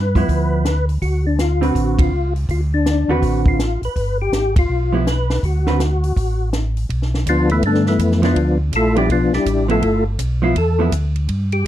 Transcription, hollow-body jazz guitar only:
0.15 F3 B3 E4
1.61 D3 C4 F#4 B4
3.09 D3 C4 F#4 B4
4.92 F3 B3 E4
5.67 D3 C4 F#4 B4
8.22 F3 B3 E4
8.96 F3 B3 E4
9.68 F3 B3 E4
10.42 F3 B3 E4
10.79 F3 B3 E4

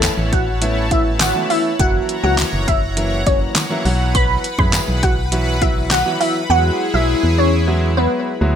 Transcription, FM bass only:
0.18 A1
1.79 F#1
2.24 C#2
2.53 F#1
3.85 B1
4.59 F#2
4.88 B1
6.50 E2
6.94 B1
7.23 E2
8.41 D2

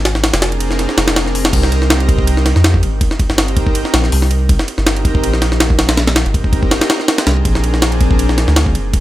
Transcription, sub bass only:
Already playing: G#1
0.33 F1
0.97 F1
1.53 C2
2.55 F2
2.82 G1
3.30 G1
3.93 A#1
4.12 C2
4.78 G1
5.23 A#1
6.26 G1
7.26 C2
7.45 A#1
8.48 D2
8.75 F1

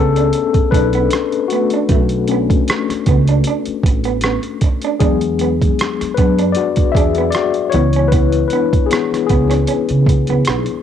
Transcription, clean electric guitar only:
0.17 D4
0.35 muted clean electric guitar stroke
0.74 D4
0.95 B3
1.13 muted clean electric guitar stroke
1.53 B3
1.74 D4
1.92 A3
2.32 B3
2.70 muted clean electric guitar stroke
3.09 B3
3.29 D4
3.48 D4
3.86 muted clean electric guitar stroke
4.05 B3
4.24 B3
4.64 muted clean electric guitar stroke
4.85 D4
5.02 D4
5.41 B3
5.81 muted clean electric guitar stroke
6.19 B3
6.39 D4
6.58 muted clean electric guitar stroke
6.97 D4
7.18 B3
7.36 muted clean electric guitar stroke
7.74 B3
7.96 C#4
8.13 B3
8.53 B3
8.92 muted clean electric guitar stroke
9.30 B3
9.50 C#4
9.68 C#4
10.07 muted clean electric guitar stroke
10.30 B3
10.48 B3

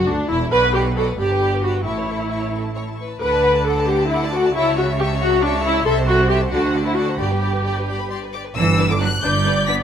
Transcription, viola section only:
0.08 D4
0.29 E4
0.52 B4
0.74 G4
0.97 A4
1.20 G4
1.63 F#4
1.84 E4
3.20 B4
3.64 A4
3.87 G4
4.08 E4
4.32 F#4
4.55 E4
4.78 F#4
4.99 G4
5.21 F#4
5.42 D4
5.64 E4
5.85 A4
6.07 F#4
6.29 G4
6.51 F#4
6.86 E4
6.96 F#4
7.19 G4
9.22 D5

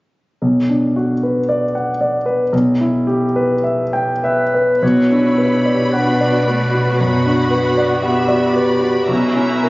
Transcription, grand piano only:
0.42 B1
0.69 D4
0.96 F#4
1.23 B4
1.49 D5
1.75 F#5
2.01 D5
2.26 B4
2.53 B1
2.81 E4
3.07 G4
3.36 B4
3.64 E5
3.93 G5
4.24 E5
4.54 B4
4.82 B1
5.11 D4
5.38 B4
5.65 D5
5.94 F#5
6.21 D5
6.48 B4
6.74 F#4
7.00 F#2
7.26 D4
7.51 B4
7.77 D5
8.03 F#5
8.28 D5
8.56 B4
8.81 F#4
9.08 B1
9.36 C#4
9.63 A#4

